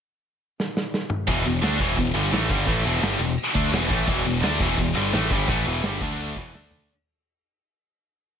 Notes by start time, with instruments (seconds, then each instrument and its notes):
0.60 snare
0.77 snare
0.94 snare
1.10 mid tom
1.27 picked electric bass E1, distorted electric guitar E2 B2 E3, kick, ride
1.45 picked electric bass E1, distorted electric guitar E2 B2, ride
1.62 picked electric bass D2, distorted electric guitar D3 A3 D4, snare, ride
1.79 picked electric bass E1, distorted electric guitar E2 B2 E3, kick, ride
1.97 picked electric bass E1, distorted electric guitar E2 B2, kick, ride
2.14 picked electric bass G1, distorted electric guitar G2 D3 G3, ride
2.32 picked electric bass A1, distorted electric guitar A2 E3 A3, snare, ride
2.49 picked electric bass G1, distorted electric guitar G2 D3 G3, kick, ride
2.67 picked electric bass A1, distorted electric guitar A2 E3 A3, kick, ride
2.85 picked electric bass E1, distorted electric guitar E2 B2 E3, ride
3.02 picked electric bass G1, distorted electric guitar G2 D3 G3, snare, ride
3.19 picked electric bass E1, distorted electric guitar E2 B2, ride
3.38 ride
3.54 picked electric bass D2, distorted electric guitar D3 A3 D4, kick, ride
3.70 picked electric bass E1, distorted electric guitar E2 B2 E3, snare, ride
3.89 picked electric bass A1, distorted electric guitar A2 E3 A3, kick, ride
4.07 picked electric bass E1, distorted electric guitar E2 B2 E3, kick, ride
4.25 picked electric bass E1, distorted electric guitar E2 B2, ride
4.42 picked electric bass D2, distorted electric guitar D3 A3 D4, snare, ride
4.60 picked electric bass E1, distorted electric guitar E2 B2 E3, kick, ride
4.77 picked electric bass E1, distorted electric guitar E2 B2, kick, ride
4.95 picked electric bass G1, distorted electric guitar G2 D3 G3, ride
5.12 picked electric bass A1, distorted electric guitar A2 E3 A3, snare, ride
5.30 picked electric bass G1, distorted electric guitar G2 D3 G3, kick, ride
5.47 picked electric bass A1, distorted electric guitar A2 E3 A3, kick, ride
5.65 picked electric bass E1, distorted electric guitar E2 B2 E3, ride
5.82 picked electric bass G1, distorted electric guitar G2 D3 G3, snare, ride
6.00 picked electric bass D2, distorted electric guitar D3 A3 D4, kick, crash
6.36 picked electric bass E1, distorted electric guitar E2 B2 E3, kick, ride
6.53 picked electric bass D2, distorted electric guitar D3 A3 D4, snare
6.71 floor tom